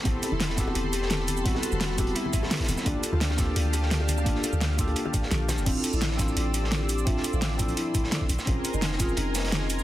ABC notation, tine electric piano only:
X:1
M:4/4
L:1/8
Q:1/4=171
K:Dm
V:1 name="Tine electric piano"
[=B,CEGA]3 [B,CEGA]4- [B,CEGA] | [G,=B,CEA]3 [B,CEGA]4- [B,CEGA] | [B,DFGA]3 [B,DFGA]4- [B,DFGA] | [B,DFGA]3 [B,DFGA]4- [B,DFGA] |
[CDEFA]3 [CDEFA]4- [CDEFA] | [CDFAe]3 [F,CDEA]4 z | [C_DF_AB]3 [CDFAB]4- [CDFAB] |]